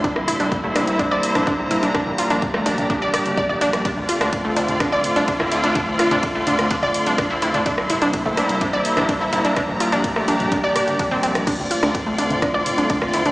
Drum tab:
CC |----------------|----------------|----------------|----------------|
RD |----------------|----------------|x---x---x---x---|x---x---x---x---|
HH |x-oxx-oxx-oxx-ox|x-oxx-oxx-oxx-ox|x-oxx-oxx-oxx-ox|x-oxx-oxx-oxx-ox|
SD |-r----r----r----|r----r----r----r|---r----r----r--|--r----r----r---|
T2 |--o--o--o--o--o-|-o--o--o--o--o--|-o--o--o--o--o--|o--o--o--o--o--o|
BD |o---o---o---o---|o---o---o---o---|o---o---o---o---|o---o---o---o---|

CC |----------------|----------------|x---------------|
RD |x---x---x---x---|x---x---x---x---|x---x---x---x---|
HH |x-oxx-oxx-oxx-ox|x-oxx-oxx-oxx-ox|x-oxx-oxx-oxx-ox|
SD |-r----r----r----|r----r----r----r|---r----r----r--|
T2 |--o--o--o--o--o-|-o--o--o--o--o--|-o--o--o--o--o--|
BD |o---o---o---o---|o---o---o---o---|o---o---o---o---|